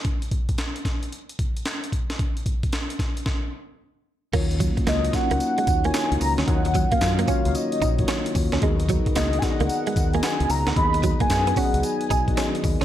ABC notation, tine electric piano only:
X:1
M:4/4
L:1/16
Q:"Swing 16ths" 1/4=112
K:Ebm
V:1 name="Tine electric piano"
z16 | z16 | [B,EFGd]3 z [B,EFGd] z [B,DEGd]3 z2 [B,EFGd]3 z2 | [B,DEGd]3 z [B,EFGd] z [B,EFGd]3 z2 [B,EFGd]3 z2 |
[CEGAe]3 z [CEGAe] z [CEGA=de]3 z2 [CEGAe]3 z2 | [CEGAe]3 z [CEGAe] z [CEGA=de]3 z2 [CEGAde]3 z2 |]